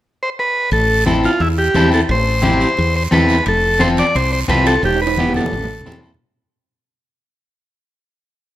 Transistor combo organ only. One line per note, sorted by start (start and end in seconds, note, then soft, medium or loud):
0.23 0.30 C5 medium
0.39 0.70 B4 medium
0.73 1.04 A4 medium
1.25 1.42 F4 medium
1.41 1.48 E4 medium
1.58 1.90 G4 medium
1.94 2.01 A4 medium
2.11 2.95 C5 medium
2.96 3.04 C5 medium
3.13 3.45 B4 medium
3.48 3.83 A4 medium
3.81 3.88 C5 medium
3.99 4.16 D5 medium
4.16 4.31 C5 medium
4.33 4.40 C5 medium
4.50 4.66 B4 medium
4.67 4.83 A4 loud
4.85 5.00 G4 medium
5.02 5.33 B4 medium
5.36 6.00 A4 medium